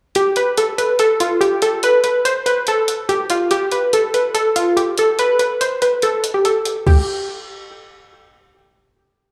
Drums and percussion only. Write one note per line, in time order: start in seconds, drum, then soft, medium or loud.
0.15 closed hi-hat medium
0.36 closed hi-hat medium
0.57 closed hi-hat medium
0.78 closed hi-hat medium
0.99 closed hi-hat medium
1.20 closed hi-hat medium
1.41 closed hi-hat medium
1.62 closed hi-hat medium
1.83 closed hi-hat medium
2.04 closed hi-hat medium
2.25 closed hi-hat medium
2.46 closed hi-hat medium
2.67 closed hi-hat medium
2.88 closed hi-hat medium
3.09 closed hi-hat medium
3.30 closed hi-hat medium
3.51 closed hi-hat medium
3.72 closed hi-hat medium
3.93 closed hi-hat medium
4.14 closed hi-hat medium
4.35 closed hi-hat medium
4.56 closed hi-hat medium
4.77 closed hi-hat medium
4.98 closed hi-hat medium
5.19 closed hi-hat medium
5.39 closed hi-hat medium
5.61 closed hi-hat medium
5.82 closed hi-hat medium
6.02 closed hi-hat medium
6.24 closed hi-hat medium
6.45 closed hi-hat medium
6.65 closed hi-hat medium
6.87 kick loud
6.87 crash medium